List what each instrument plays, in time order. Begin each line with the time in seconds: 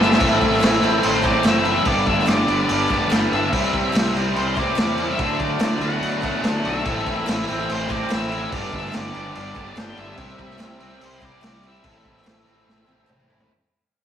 Already playing: fingered electric bass G1, distorted electric guitar G2 D3 G3 B3 D4 G4, overdriven electric guitar G2 D3 G3 B3 D4, tonewheel organ B3 C4 D4
0.00 overdriven electric guitar G3 B3 D4 G4, tonewheel organ E4 F4, lead electric guitar E5, snare
0.05 tonewheel organ G4 A4
0.11 tonewheel organ B4 C5, snare
0.17 distorted electric guitar A2 E3 C4, overdriven electric guitar A2, tonewheel organ C4 E4 A4 C5 D5, crash
0.21 fingered electric bass A1, overdriven electric guitar A2 E3 A3 C4 E4, distorted electric guitar E4 A4, kick
0.42 fingered electric bass A1, overdriven electric guitar E3, kick, crash
0.54 snare
0.61 fingered electric bass A1, overdriven electric guitar E3, snare, clap, crash
0.82 fingered electric bass A1, distorted electric guitar A2 E3 C4 E4 A4, overdriven electric guitar C4, crash
1.03 fingered electric bass A1, overdriven electric guitar A3, lead electric guitar C5, crash
1.23 overdriven electric guitar A2 E3 A3 C4 E4, lead electric guitar D5, kick, snare, clap, crash
1.44 fingered electric bass F#1, overdriven electric guitar A2 E3 A3 C4 E4, lead electric guitar E5, snare, clap, crash
1.65 overdriven electric guitar E4, crash
1.85 fingered electric bass G1, overdriven electric guitar G2 D3 G3 B3 D4, distorted electric guitar G2 D3 G3 B3 D4 G4, tonewheel organ B3 D4 G4 B4, lead electric guitar D5, kick, crash
2.06 fingered electric bass G1, overdriven electric guitar D3, lead electric guitar E5, kick, crash
2.19 snare
2.27 fingered electric bass G1, overdriven electric guitar D3, lead electric guitar D5, snare, clap, crash
2.47 fingered electric bass G1, distorted electric guitar G2 D3 G3 B3 D4 G4, overdriven electric guitar B3, crash
2.69 fingered electric bass G1, overdriven electric guitar G3, lead electric guitar D5, crash
2.89 fingered electric bass G1, overdriven electric guitar G2 D3 G3 B3 D4, kick, snare, clap, crash
3.10 fingered electric bass G1, overdriven electric guitar G2 D3 G3 B3 D4, lead electric guitar G5, snare, clap, crash
3.32 fingered electric bass G1, overdriven electric guitar D4, lead electric guitar E5, crash
3.51 fingered electric bass C2, distorted electric guitar C3 E3 G3 E4 G4, overdriven electric guitar C3 G3 C4 E4, kick, crash
3.55 tonewheel organ C4 E4 G4 C5
3.73 fingered electric bass C2, overdriven electric guitar G3, kick, crash
3.93 fingered electric bass C2, overdriven electric guitar C3, snare, clap, crash
4.14 fingered electric bass C2, distorted electric guitar C3 E3 G3 E4 G4, overdriven electric guitar C4, crash
4.36 fingered electric bass C2, overdriven electric guitar G3, lead electric guitar C5, crash
4.56 overdriven electric guitar C3 G3 C4 E4, lead electric guitar D5, kick, snare, clap, crash
4.76 fingered electric bass E2, overdriven electric guitar C3 G3 C4 E4, snare, clap, crash
4.98 overdriven electric guitar E4, crash
5.11 lead electric guitar E5
5.18 fingered electric bass D2, distorted electric guitar D3 F#3 A3 D4 F#4, overdriven electric guitar D3 F#3 A3 D4, tonewheel organ D4 B4, lead electric guitar E5, kick, crash
5.22 tonewheel organ F#4 A4
5.39 fingered electric bass D2, overdriven electric guitar A3, lead electric guitar D5, kick, crash
5.60 fingered electric bass D2, overdriven electric guitar D3, snare, clap, crash
5.81 fingered electric bass D2, distorted electric guitar D3 F#3 A3 D4 F#4, overdriven electric guitar B3, lead electric guitar F#5, crash
6.02 fingered electric bass D2, overdriven electric guitar A3, crash
6.22 fingered electric bass D2, overdriven electric guitar D3 F#3 A3 B3 D4, kick, snare, clap, crash
6.42 fingered electric bass D2, overdriven electric guitar D3 F#3 A3 D4, snare, clap, crash
6.46 lead electric guitar F#5
6.65 fingered electric bass B1, overdriven electric guitar F#4, lead electric guitar E5, crash
6.84 fingered electric bass A1, distorted electric guitar A2 E3 C4 E4 A4, overdriven electric guitar A2 E3 A3 C4 E4, tonewheel organ C4 A4, kick, crash
6.88 tonewheel organ E4 C5
7.06 fingered electric bass A1, overdriven electric guitar E3, kick, crash
7.27 fingered electric bass A1, overdriven electric guitar E3, snare, clap, crash
7.46 fingered electric bass A1, distorted electric guitar A2 E3 C4 E4 A4, overdriven electric guitar C4, crash
7.69 fingered electric bass A1, overdriven electric guitar A3, lead electric guitar C5, crash
7.89 overdriven electric guitar A2 E3 A3 C4 E4, lead electric guitar D5, kick, snare, clap, crash
8.09 fingered electric bass A1, overdriven electric guitar A2 E3 A3 C4 E4, snare, clap, crash
8.14 lead electric guitar E5
8.31 overdriven electric guitar E4, crash
8.50 fingered electric bass G1, overdriven electric guitar G2 D3 G3 B3 D4, distorted electric guitar G2 D3 G3 B3 D4 G4, tonewheel organ B3 D4 G4 B4, kick, crash
8.55 lead electric guitar D5
8.73 fingered electric bass G1, overdriven electric guitar D3, lead electric guitar E5, kick, crash
8.84 snare
8.92 fingered electric bass G1, overdriven electric guitar D3, lead electric guitar D5, snare, clap, crash
9.11 fingered electric bass G1, distorted electric guitar G2 D3 G3 B3 D4 G4, overdriven electric guitar B3, crash
9.35 fingered electric bass G1, overdriven electric guitar G3, lead electric guitar D5, crash
9.54 fingered electric bass G1, overdriven electric guitar G2 D3 G3 B3 D4, kick, clap, crash
9.75 fingered electric bass G1, overdriven electric guitar G2 D3 G3 B3 D4, lead electric guitar G5, snare, clap, crash
9.95 fingered electric bass G1, overdriven electric guitar D4, lead electric guitar E5, crash
10.15 fingered electric bass C2, overdriven electric guitar C3 G3 C4, distorted electric guitar C3 G3 C4 E4, tonewheel organ C4 E4 G4 C5, kick, crash
10.20 overdriven electric guitar E4, distorted electric guitar G4
10.38 fingered electric bass C2, overdriven electric guitar G3, kick, crash
10.50 snare
10.59 fingered electric bass C2, overdriven electric guitar C3, snare, clap, crash
10.79 fingered electric bass C2, distorted electric guitar C3 G3 C4 E4 G4, overdriven electric guitar C4, crash
11.01 fingered electric bass C2, overdriven electric guitar G3, lead electric guitar C5, crash
11.20 overdriven electric guitar C3 G3 C4 E4, kick, clap, crash
11.25 lead electric guitar D5
11.40 fingered electric bass C2, overdriven electric guitar C3 G3 C4 E4, snare, clap, crash
11.63 overdriven electric guitar E4, lead electric guitar E5, crash
11.82 fingered electric bass A1, overdriven electric guitar A2 E3 A3 C4 E4, distorted electric guitar A2 E3 C4 E4 A4, tonewheel organ C4 E4 A4 C5, kick, crash
12.04 fingered electric bass A1, overdriven electric guitar E3, kick, crash
12.17 snare
12.24 fingered electric bass A1, overdriven electric guitar E3, snare, clap, crash
12.46 fingered electric bass A1, distorted electric guitar A2 E3 C4 E4 A4, overdriven electric guitar C4, crash
12.66 fingered electric bass A1, overdriven electric guitar A3, snare
12.86 fingered electric bass A1, overdriven electric guitar A2 E3 A3 C4 E4, clap, high tom
13.07 fingered electric bass A1, overdriven electric guitar A2 E3 A3 C4 E4, clap, mid tom
13.20 mid tom
13.30 fingered electric bass A1, overdriven electric guitar E4, floor tom
13.40 floor tom